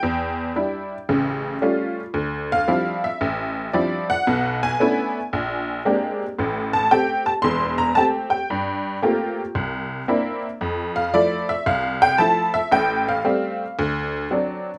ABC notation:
X:1
M:4/4
L:1/8
Q:"Swing" 1/4=114
K:F
V:1 name="Honky-tonk piano"
g6- g z | z f2 e3 d _g- | _g _a6 z | z a g a c' b a g- |
g6- g z | z f d e f g a e | g f3 z4 |]
V:2 name="Honky-tonk piano"
E,,2 [G,DE] z [A,,,^C,]2 [G,A,^C^E] z | D,,2 [F,G,CDE] z A,,,2 [F,G,CDE] z | [=B,,,=B,,]2 [A,=B,^CDE] z _B,,,2 [_A,_B,=CDG] z | [A,,,A,,]2 [A,CG] z [E,,,E,,]2 [A,CG] z |
G,,2 [A,B,CFG] z C,,2 [B,CDE] z | F,,2 [F,A,E] z C,,2 [F,A,E] z | [A,,,A,,]2 [G,A,C] z D,,2 [^F,CD] z |]